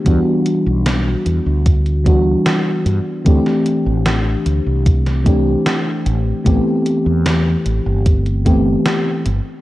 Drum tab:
HH |x-x-x-x-xxx-x-x-|x-x-x-x-xxx-x-x-|x-x-x-x-xxx-x-x-|
SD |----o-------o---|-o--o----o--o---|----o-------o---|
BD |o-------o-o-----|o-------o-o-----|o-------o-o-----|